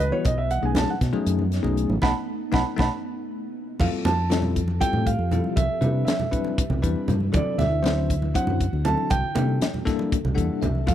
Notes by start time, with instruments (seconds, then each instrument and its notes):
Already playing: ambient pad E3 G3 E4 B4
0.00 fingered electric bass C#2, grand piano B4, closed hi-hat
0.12 tine electric piano E3 G3 B3 E4 F#4, grand piano C#5, high conga
0.25 fingered electric bass B1, ambient pad A3 B3 D#4, grand piano D#5, kick, closed hi-hat, muted conga
0.38 grand piano E5
0.51 grand piano F#5, closed hi-hat
0.62 fingered electric bass B1, tine electric piano F#3 A3 C#4 D#4 G#4, grand piano G#5
0.75 grand piano A5, snare, closed hi-hat, high conga, low conga
0.90 grand piano F#5
1.01 fingered electric bass B2, kick, snare, closed hi-hat
1.13 tine electric piano F#3 A3 C#4 D#4 G#4, muted fingered electric bass stroke, muted conga, low conga
1.26 fingered electric bass F#2, closed hi-hat
1.39 high conga
1.52 snare, closed hi-hat, low conga
1.63 fingered electric bass B1, tine electric piano F#3 A3 C#4 D#4 G#4, low conga
1.77 closed hi-hat
1.89 fingered electric bass A1, high conga
2.02 fingered electric bass B1, tine electric piano A3 B3 D#4, grand piano F#5 A5 B5, kick, snare, muted conga
2.52 fingered electric bass B1, tine electric piano A3 B3 D#4, grand piano F#5 A5 B5, kick, snare, muted conga
2.76 fingered electric bass B1, tine electric piano A3 B3 D#4, grand piano F#5 A5 B5, kick, muted conga
2.80 snare
3.79 fingered electric bass F2, ambient pad F3 C4 G4, tine electric piano G3 C4 E4 F4 A4, grand piano F5, kick, crash, muted conga, low conga
3.93 muted fingered electric bass stroke
4.05 fingered electric bass F2, grand piano A5, snare, closed hi-hat, low conga
4.30 tine electric piano G3 C4 E4 F4 A4, snare, closed hi-hat, high conga
4.42 low conga
4.56 kick, closed hi-hat
4.68 muted conga
4.80 tine electric piano G3 C4 E4 F4 A4, grand piano G5, kick, closed hi-hat
4.93 fingered electric bass A2, high conga, low conga
5.06 grand piano F5, kick, closed hi-hat
5.18 fingered electric bass F2, low conga
5.31 tine electric piano G3 C4 E4 F4 A4, closed hi-hat, low conga
5.44 high conga
5.56 fingered electric bass C2, ambient pad C3 D4 E4 B4, grand piano E5, kick, closed hi-hat, muted conga, low conga
5.81 fingered electric bass C3, tine electric piano G3 C4 D4 E4 B4, closed hi-hat, low conga
6.05 grand piano E5, snare, closed hi-hat, high conga
6.19 low conga
6.32 tine electric piano G3 C4 D4 E4 B4, kick, closed hi-hat
6.44 muted conga
6.58 kick, closed hi-hat
6.70 fingered electric bass C2, high conga, low conga
6.82 fingered electric bass E2, tine electric piano G3 C4 D4 E4 B4, kick, closed hi-hat
6.96 low conga
7.08 fingered electric bass G2, closed hi-hat, low conga
7.20 high conga
7.32 fingered electric bass D2, ambient pad D3 C4 F#4, tine electric piano F#3 C4 D4 E4 A4, grand piano D5, kick, closed hi-hat, muted conga, low conga
7.46 muted fingered electric bass stroke
7.58 fingered electric bass D2, grand piano E5, snare, closed hi-hat, low conga
7.83 tine electric piano F#3 C4 D4 E4 C5, snare, closed hi-hat, high conga
8.10 kick, closed hi-hat
8.22 muted conga
8.34 tine electric piano F#3 C4 D4 E4 C5, grand piano F#5, kick, closed hi-hat
8.47 fingered electric bass F#2, high conga, low conga
8.61 kick, closed hi-hat
8.73 fingered electric bass D2, low conga
8.85 tine electric piano F#3 C4 D4 E4 A4, grand piano A5, closed hi-hat, low conga
8.98 high conga
9.10 fingered electric bass C2, ambient pad C3 A#3 D4 A4, grand piano G5, kick, closed hi-hat, muted conga
9.35 fingered electric bass C3, tine electric piano G3 A#3 D4 E4 A4, closed hi-hat, low conga
9.49 low conga
9.62 snare, closed hi-hat, high conga, low conga
9.74 low conga
9.85 tine electric piano G3 A#3 D4 E4 A4, kick, snare, closed hi-hat
9.99 muted conga
10.12 kick, closed hi-hat
10.25 fingered electric bass C2, high conga, low conga
10.35 fingered electric bass E2, tine electric piano G3 A#3 D4 E4 A4 F#5, kick, closed hi-hat
10.62 fingered electric bass C2, tine electric piano E5, closed hi-hat, low conga
10.75 high conga
10.87 fingered electric bass F2, tine electric piano G3 C4 E4 F4 A4, grand piano F5, kick, closed hi-hat, muted conga, low conga